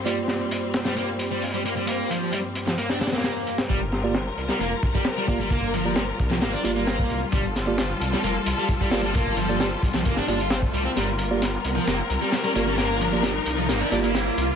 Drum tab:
HH |x---x---x---x-x-x---x---o-x-x---|x---x---x---x---x---xxxxx---x-x-|x---x---x---x---x---x---o-x-x---|x---x---x---x---x---x-x-x---x---|
SD |----o-------o-o-----------------|--------------o---o-ooooo-----o-|----o---o-----o---------o-------|--------o-----o-o-------o-------|
BD |--------------------------------|--------------------------------|o-------------------o-o-----o---|o-----------o-------------o-----|

HH |x---x---x---x---x---x---x---o-x-|x---x---x---x---x---x-x-x---x---|x---x---x---x---x---x---o-x-x---|x---x---x---x---x---x-x-x---x---|
SD |----o---o-----o-------------o---|--------o-----o---o-----o-------|o-------o-------o-------o-------|o-------o-------o-------o-------|
BD |o-----------------------o-o-----|o-----------o---o---------o-----|--------------------------------|--------------------------------|